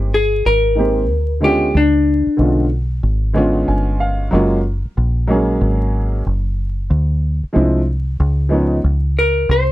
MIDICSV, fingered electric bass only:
0, 0, Header, 1, 3, 480
1, 0, Start_track
1, 0, Tempo, 645161
1, 1298, Time_signature, 4, 2, 24, 8
1, 7231, End_track
2, 0, Start_track
2, 0, Title_t, "Fingered electric bass"
2, 0, Program_c, 0, 33
2, 0, Note_on_c, 0, 31, 89
2, 315, Note_off_c, 0, 31, 0
2, 339, Note_on_c, 0, 32, 80
2, 820, Note_off_c, 0, 32, 0
2, 820, Note_on_c, 0, 38, 81
2, 1275, Note_off_c, 0, 38, 0
2, 1299, Note_on_c, 0, 37, 94
2, 1667, Note_off_c, 0, 37, 0
2, 1776, Note_on_c, 0, 35, 88
2, 2232, Note_off_c, 0, 35, 0
2, 2255, Note_on_c, 0, 32, 90
2, 2712, Note_off_c, 0, 32, 0
2, 2738, Note_on_c, 0, 31, 83
2, 3194, Note_off_c, 0, 31, 0
2, 3217, Note_on_c, 0, 30, 94
2, 3586, Note_off_c, 0, 30, 0
2, 3700, Note_on_c, 0, 34, 96
2, 4155, Note_off_c, 0, 34, 0
2, 4175, Note_on_c, 0, 32, 96
2, 4632, Note_off_c, 0, 32, 0
2, 4659, Note_on_c, 0, 30, 75
2, 5114, Note_off_c, 0, 30, 0
2, 5137, Note_on_c, 0, 38, 102
2, 5506, Note_off_c, 0, 38, 0
2, 5623, Note_on_c, 0, 36, 93
2, 6076, Note_off_c, 0, 36, 0
2, 6099, Note_on_c, 0, 37, 99
2, 6554, Note_off_c, 0, 37, 0
2, 6578, Note_on_c, 0, 37, 78
2, 7034, Note_off_c, 0, 37, 0
2, 7062, Note_on_c, 0, 36, 98
2, 7231, Note_off_c, 0, 36, 0
2, 7231, End_track
3, 0, Start_track
3, 0, Title_t, "Muted fingered electric bass strokes"
3, 1686, Note_on_c, 9, 29, 45
3, 1760, Note_off_c, 9, 29, 0
3, 3611, Note_on_c, 9, 29, 42
3, 3685, Note_off_c, 9, 29, 0
3, 5531, Note_on_c, 9, 29, 42
3, 5606, Note_off_c, 9, 29, 0
3, 7231, End_track
0, 0, End_of_file